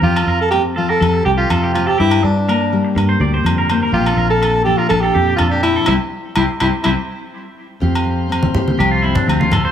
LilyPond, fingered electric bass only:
\new Staff \with { instrumentName = "Fingered electric bass" } { \clef bass \time 4/4 \key f \major \tempo 4 = 123 f,8 f,4. f,8 c,8 f,4 | g,8 g,4. g,8 d,8 f,4 | bes,,8 bes,,4. bes,,8 f,8 f,4 | c,8 r8 c,8 c,8 c,8 r4. |
f,2 c,4 d,4 | }